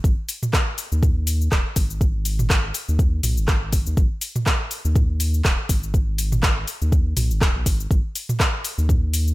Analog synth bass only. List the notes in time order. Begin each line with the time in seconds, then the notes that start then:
0.04 G#1
0.92 D#2
1.52 D#1
1.76 G#1
2.89 D#2
3.24 B1
3.38 G#1
3.87 D#2
3.97 G#1
4.85 D#2
5.45 D#1
5.69 G#1
6.82 D#2
7.17 B1
7.31 G#1
7.41 D#1
7.55 B1
7.66 G#1
7.91 G#1
8.78 D#2